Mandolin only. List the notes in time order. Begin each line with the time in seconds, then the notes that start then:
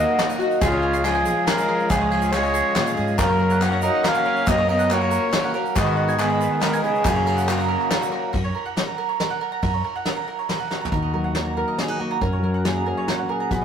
Already playing: F#4 F#5
0.19 F#4
0.29 D#5
0.40 F#4
0.61 G#4
0.72 C#5
0.83 G#4
0.93 F5
1.04 G#4
1.15 G#5
1.26 G#4
1.47 G#4
1.58 F5
1.69 G#4
1.90 G#4
2.01 C#5
2.11 G#4
2.22 F5
2.32 G#4
2.43 G#5
2.54 G#4
2.75 G#4
2.86 F5
2.97 G#4
3.18 A#4
3.29 C#5
3.40 A#4
3.51 F#5
3.62 A#4
3.72 A#5
3.83 A#4
4.04 A#4
4.15 F#4
4.26 A#4
4.47 A#4
4.58 C#5
4.69 A#4
4.79 F#5
4.90 A#4
5.01 A#5
5.11 A#4
5.33 A#4
5.44 F#5
5.54 A#4
5.76 B4
5.86 D#5
5.97 B4
6.08 G#5
6.19 B4
6.30 B5
6.41 B4
6.63 B4
6.73 G#5
6.84 B4
7.05 A#4
7.16 C#5
7.26 A#4
7.37 F#5
7.47 A#4
7.58 A#5
7.69 A#4
7.90 A#4
8.01 F#5
8.12 A#4
8.33 A#4
8.44 C#5
8.55 A#4
8.66 F#5
8.77 A#4
8.87 A#5
8.98 A#4
9.09 C#5
9.20 A#4
9.30 F#5
9.41 A#4
9.52 A#5
9.63 A#4
9.74 C#5
9.84 A#4
9.96 F#5
10.05 A#4
10.16 A#5
10.28 A#4
10.39 C#5
10.49 A#4
10.60 F#5
10.70 A#4
10.81 A#5
10.92 A#4
11.02 D#5
11.14 A#4
11.24 F#5
11.35 A#4
11.46 A#5
11.57 A#4
11.68 D#5
11.79 A#4
11.89 F#5
12.00 A#4
12.11 A#5
12.22 A#4
12.33 C#5
12.44 A#4
12.54 F#5
12.65 A#4
12.76 A#5
12.86 A#4
12.97 C#5
13.08 A#4
13.19 F#5
13.29 A#4
13.40 A#5
13.51 B4
13.62 D#5